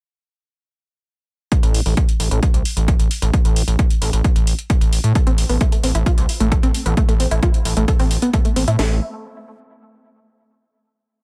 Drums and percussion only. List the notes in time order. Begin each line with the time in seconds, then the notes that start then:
1.52 kick, closed hi-hat
1.63 closed hi-hat
1.74 open hi-hat
1.86 open hi-hat
1.97 kick, closed hi-hat
2.09 closed hi-hat
2.20 open hi-hat
2.31 closed hi-hat
2.43 kick, closed hi-hat
2.54 closed hi-hat
2.65 open hi-hat
2.77 closed hi-hat
2.88 kick, closed hi-hat
3.00 closed hi-hat
3.11 open hi-hat
3.22 closed hi-hat
3.33 kick, closed hi-hat
3.45 closed hi-hat
3.56 open hi-hat
3.68 closed hi-hat
3.79 kick, closed hi-hat
3.90 closed hi-hat
4.02 open hi-hat
4.13 closed hi-hat
4.24 kick, closed hi-hat
4.36 closed hi-hat
4.47 open hi-hat
4.59 closed hi-hat
4.70 kick, closed hi-hat
4.81 closed hi-hat
4.93 open hi-hat
5.04 closed hi-hat
5.15 kick, closed hi-hat
5.27 closed hi-hat
5.38 open hi-hat
5.49 open hi-hat
5.61 kick, closed hi-hat
5.72 closed hi-hat
5.83 open hi-hat
5.95 closed hi-hat
6.06 kick, closed hi-hat
6.18 closed hi-hat
6.29 open hi-hat
6.40 closed hi-hat
6.52 kick, closed hi-hat
6.63 closed hi-hat
6.74 open hi-hat
6.86 closed hi-hat
6.97 kick, closed hi-hat
7.09 closed hi-hat
7.20 open hi-hat
7.31 closed hi-hat
7.43 kick, closed hi-hat
7.54 closed hi-hat
7.65 open hi-hat
7.77 closed hi-hat
7.88 kick, closed hi-hat
7.99 open hi-hat
8.11 open hi-hat
8.22 closed hi-hat
8.34 kick, closed hi-hat
8.45 closed hi-hat
8.56 open hi-hat
8.68 closed hi-hat
8.79 snare, open hi-hat